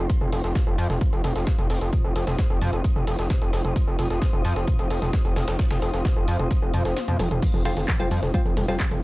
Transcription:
Already playing: F4 C5 C6
0.10 kick, closed hi-hat
0.21 F1, mid tom
0.32 F1, closed hi-hat, open hi-hat
0.38 D#6
0.44 F1, snare, closed hi-hat
0.55 kick, snare, closed hi-hat, mid tom
0.67 F1
0.78 F2, closed hi-hat, open hi-hat
0.90 F1, snare, closed hi-hat, mid tom
1.01 kick, closed hi-hat
1.13 F1, closed hi-hat
1.24 F1, closed hi-hat, mid tom, open hi-hat
1.36 F1, snare, closed hi-hat
1.47 kick, snare, closed hi-hat
1.58 F1, closed hi-hat, mid tom
1.70 F1, open hi-hat
1.81 F1, closed hi-hat
1.93 kick, closed hi-hat, mid tom
2.04 F1
2.16 F1, closed hi-hat, open hi-hat
2.27 F1, snare, closed hi-hat, mid tom
2.39 kick, snare, closed hi-hat
2.50 F1
2.61 F2, closed hi-hat, mid tom, open hi-hat
2.73 F1, closed hi-hat
2.84 kick, closed hi-hat
2.96 F1, mid tom
3.07 F1, closed hi-hat, open hi-hat
3.19 F1, snare, closed hi-hat
3.30 kick, snare, closed hi-hat, mid tom
3.42 F1, closed hi-hat
3.53 F1, snare, closed hi-hat, open hi-hat
3.65 F1, closed hi-hat, mid tom
3.76 kick, closed hi-hat
3.87 F1
3.99 F1, closed hi-hat, mid tom, open hi-hat
4.10 F1, snare, closed hi-hat
4.22 kick, snare, closed hi-hat
4.33 F1, mid tom
4.45 F2, closed hi-hat, open hi-hat
4.56 F1, snare, closed hi-hat
4.68 kick, closed hi-hat, mid tom
4.79 F1, closed hi-hat
4.90 F1, closed hi-hat, open hi-hat
5.02 F1, snare, closed hi-hat, mid tom
5.13 kick, snare, closed hi-hat
5.25 F1, closed hi-hat
5.36 F1, snare, closed hi-hat, mid tom, open hi-hat
5.48 F1, snare, closed hi-hat
5.59 kick, snare, closed hi-hat
5.71 F1, snare, closed hi-hat, mid tom
5.82 F1, closed hi-hat, open hi-hat
5.94 F1, snare, closed hi-hat
6.05 kick, snare, closed hi-hat, mid tom
6.17 F1
6.28 F2, closed hi-hat, open hi-hat
6.39 F1, closed hi-hat, mid tom
6.51 kick, closed hi-hat
6.62 F1
6.74 F2, closed hi-hat, mid tom, open hi-hat
6.85 F1, snare, closed hi-hat
6.97 snare, closed hi-hat, high tom
7.08 F2, closed hi-hat, mid tom, high tom
7.19 F1, snare, closed hi-hat, open hi-hat, mid tom
7.31 F1, closed hi-hat, mid tom
7.42 F3, kick, closed hi-hat, crash
7.54 F1 F3, mid tom
7.65 F1 F3 C4 F4, closed hi-hat, open hi-hat
7.71 C6
7.77 F1 D#3, snare, closed hi-hat
7.88 F3, kick, snare, clap, closed hi-hat, mid tom
8.00 F1 F3 G3 C4 F4
8.11 F2 G3, closed hi-hat, open hi-hat
8.23 F1, snare, closed hi-hat, mid tom
8.34 F3 G3 C4 F4, kick, closed hi-hat
8.45 F1 F3, closed hi-hat
8.57 F1 G#3, closed hi-hat, mid tom, open hi-hat
8.68 F1 F3 G3 C4 F4, snare, closed hi-hat
8.80 F3, kick, snare, clap, closed hi-hat
8.91 F1 F3, closed hi-hat, mid tom

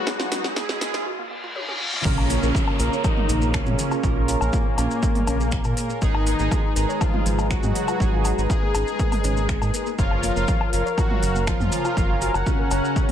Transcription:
Already playing: F#3 G#3 F#4 G#4 B4 D#5 B5, riser
0.07 G#3 D#4 F#4 G#4, kick, snare
0.20 F4, snare
0.32 C#4, snare, open hi-hat
0.44 G#3 D#4 G#4, snare
0.56 G#3 B3 G#4, kick, snare
0.69 F#4, snare
0.81 G#3 A#3 D#4 G#4, snare, open hi-hat
0.94 snare
1.06 F#4, reverse cymbal
1.19 A#3
1.31 A#3
1.44 F4
1.56 C#5, high tom
1.68 C#4, high tom
1.80 F4
1.93 F4, mid tom
2.05 A#1 C#3 A#3 C#4 F4 G#4 A#4 C#5 A#5, kick, crash, downlifter, maracas
2.18 low woodblock
2.24 F5 A#5
2.30 A#3 A#4, open hi-hat, maracas
2.42 A#1 A#3 F4 A#4, maracas
2.53 F3 F4 C#6, kick, maracas
2.68 low woodblock
2.79 A#1 A#3 F4 A#4 A#5, open hi-hat, maracas
2.92 C#5 C#6, maracas
3.04 D#3 F3 D#4 F4, kick, low woodblock, maracas
3.17 F4 F5, mid tom
3.29 A#1, open hi-hat, maracas
3.42 A#3 A#4, maracas
3.54 C#3 F3 C#4 F4, finger snap, kick, low woodblock, maracas
3.66 A#2 A#3 A#4, mid tom, maracas
3.79 open hi-hat, maracas
3.91 F4 F5, low woodblock, maracas
4.03 A#1 F3 A#3 F4 A#4 G#5, kick, maracas
4.16 F4 F5
4.28 F4 F5, open hi-hat, maracas
4.41 A#1 A#3 F4 A#4, low woodblock, maracas
4.53 A#2 A#3 F4 F5, kick, maracas
4.66 A#3 A#4
4.78 A#1 A#3 C#4 F4 A#4 C#5, open hi-hat, low woodblock, maracas
4.91 maracas
5.03 A#3 A#4, kick, maracas
5.15 A#3 A#4, mid tom, open hi-hat
5.27 A#1 C#4 C#5, open hi-hat, low woodblock, maracas
5.40 A#3 A#4, maracas
5.52 finger snap, kick, maracas
5.64 A#2 A#3 A#4, low woodblock, maracas
5.77 A#3 A#4, open hi-hat, maracas
5.90 A#3 A#4, maracas
6.02 G#1 D#3 G#3 A#3 D#4 G#4 A#4 B4 A#5, kick, maracas
6.15 low woodblock
6.26 A#3 A#4 D#5, open hi-hat, maracas
6.39 G#1 G#3 A#3 D#4 G#4 A#4, maracas
6.51 F3 F4, kick, low woodblock, maracas
6.76 G#1 G#3 D#4 G#4 A#4 A#5, open hi-hat, maracas
6.89 B4 C#5 C#6, maracas
7.01 F3 F4, kick, low woodblock, maracas
7.14 F4 F5, mid tom
7.26 G#1, open hi-hat, maracas
7.38 A#3 A#4, low woodblock, maracas
7.51 F3 F#3 F4 F#4, finger snap, kick, maracas
7.63 G#2 A#3 A#4, mid tom, maracas
7.75 open hi-hat, maracas
7.88 F4 F5, low woodblock, maracas
8.00 G#1 F3 G#3 D#4 G#4, kick, maracas
8.13 F4 F5
8.25 F#4 F#5, open hi-hat, low woodblock, maracas
8.38 G#1 G#3 D#4 G#4, maracas
8.50 G#3 F4 G#4 F5, kick, maracas
8.63 A#3 A#4
8.74 G#1 G#3 C#4 D#4 G#4 C#5, open hi-hat, low woodblock, maracas
8.87 maracas
8.99 A#3 A#4, kick, maracas
9.12 A#3 A#4, mid tom, open hi-hat, low woodblock, maracas
9.24 G#1 C#4 C#5, open hi-hat, maracas
9.37 A#3 A#4, maracas
9.49 finger snap, kick, maracas
9.62 G#2 A#3 A#4, low woodblock, maracas
9.74 A#3 A#4, open hi-hat, maracas
9.86 A#3 A#4, maracas
9.98 F#1 F3 A#3 F4 A#4 C#5 F5 A#5 F6, kick, maracas
10.11 low woodblock
10.23 A#3 A#4 C#5, open hi-hat, maracas
10.36 F#1 A#3 A#4 C#5 F5, maracas
10.48 F3 F4, kick, maracas
10.61 low woodblock
10.67 G#5
10.73 F#1 A#4 C#5 F5 A#5, open hi-hat, maracas
10.86 C#5 C#6, maracas
10.98 F3 F#3 F4 F#4, kick, low woodblock, maracas
11.11 F4 F5, mid tom
11.23 F#1 A#5, open hi-hat, maracas
11.35 A#3 A#4, maracas
11.47 F3 F4, finger snap, kick, low woodblock, maracas
11.60 F#2 A#3 A#4, mid tom, maracas
11.72 open hi-hat, maracas
11.85 F4 F5, low woodblock, maracas
11.97 F#1 F3 A#4 C#5 F5, kick, maracas
12.10 F4 F5
12.21 F#4 F#5, open hi-hat, maracas
12.34 F#1 F#4 C#5 F#5, low woodblock, maracas
12.46 C#3 C#4 F4 F5, kick, maracas
12.59 A#3 A#4
12.71 F#1 C#4 F#4 C#5 F#5, open hi-hat, low woodblock, maracas
12.85 maracas
12.96 A#3 A#4, kick, maracas

